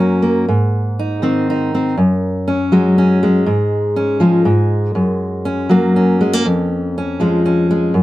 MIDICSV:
0, 0, Header, 1, 2, 480
1, 0, Start_track
1, 0, Key_signature, -5, "major"
1, 0, Tempo, 498339
1, 459, Time_signature, 3, 2, 24, 8
1, 7734, End_track
2, 0, Start_track
2, 0, Title_t, "Steel-string acoustic guitar"
2, 0, Program_c, 0, 25
2, 0, Note_on_c, 0, 42, 73
2, 0, Note_on_c, 0, 54, 66
2, 0, Note_on_c, 0, 58, 57
2, 0, Note_on_c, 0, 61, 60
2, 203, Note_off_c, 0, 58, 0
2, 215, Note_on_c, 0, 58, 55
2, 427, Note_off_c, 0, 42, 0
2, 428, Note_off_c, 0, 58, 0
2, 432, Note_off_c, 0, 54, 0
2, 437, Note_off_c, 0, 61, 0
2, 466, Note_on_c, 0, 44, 70
2, 957, Note_on_c, 0, 63, 64
2, 1177, Note_on_c, 0, 51, 65
2, 1184, Note_on_c, 0, 60, 61
2, 1428, Note_off_c, 0, 63, 0
2, 1444, Note_on_c, 0, 63, 62
2, 1661, Note_off_c, 0, 60, 0
2, 1681, Note_on_c, 0, 60, 54
2, 1873, Note_off_c, 0, 44, 0
2, 1881, Note_off_c, 0, 60, 0
2, 1882, Note_off_c, 0, 63, 0
2, 1897, Note_off_c, 0, 51, 0
2, 1902, Note_on_c, 0, 42, 70
2, 2385, Note_on_c, 0, 61, 64
2, 2618, Note_on_c, 0, 54, 70
2, 2625, Note_on_c, 0, 56, 65
2, 2859, Note_off_c, 0, 61, 0
2, 2871, Note_on_c, 0, 61, 65
2, 3097, Note_off_c, 0, 56, 0
2, 3109, Note_on_c, 0, 56, 57
2, 3306, Note_off_c, 0, 42, 0
2, 3306, Note_off_c, 0, 54, 0
2, 3312, Note_off_c, 0, 61, 0
2, 3337, Note_on_c, 0, 44, 75
2, 3818, Note_on_c, 0, 61, 61
2, 4043, Note_off_c, 0, 56, 0
2, 4044, Note_on_c, 0, 53, 69
2, 4054, Note_on_c, 0, 56, 60
2, 4260, Note_off_c, 0, 53, 0
2, 4266, Note_off_c, 0, 44, 0
2, 4267, Note_off_c, 0, 61, 0
2, 4288, Note_on_c, 0, 44, 75
2, 4744, Note_off_c, 0, 44, 0
2, 4768, Note_on_c, 0, 42, 71
2, 5252, Note_on_c, 0, 61, 67
2, 5484, Note_on_c, 0, 54, 68
2, 5494, Note_off_c, 0, 56, 0
2, 5497, Note_on_c, 0, 58, 64
2, 5737, Note_off_c, 0, 61, 0
2, 5741, Note_on_c, 0, 61, 63
2, 5975, Note_off_c, 0, 58, 0
2, 5979, Note_on_c, 0, 56, 59
2, 6100, Note_off_c, 0, 56, 0
2, 6100, Note_on_c, 0, 58, 52
2, 6184, Note_off_c, 0, 54, 0
2, 6187, Note_off_c, 0, 42, 0
2, 6216, Note_on_c, 0, 41, 81
2, 6220, Note_off_c, 0, 58, 0
2, 6716, Note_off_c, 0, 61, 0
2, 6720, Note_on_c, 0, 61, 66
2, 6932, Note_on_c, 0, 53, 64
2, 6942, Note_on_c, 0, 56, 58
2, 7169, Note_off_c, 0, 61, 0
2, 7180, Note_on_c, 0, 61, 68
2, 7411, Note_off_c, 0, 56, 0
2, 7422, Note_on_c, 0, 56, 58
2, 7626, Note_off_c, 0, 53, 0
2, 7630, Note_off_c, 0, 61, 0
2, 7644, Note_off_c, 0, 41, 0
2, 7648, Note_on_c, 0, 42, 76
2, 7660, Note_off_c, 0, 56, 0
2, 7734, Note_off_c, 0, 42, 0
2, 7734, End_track
0, 0, End_of_file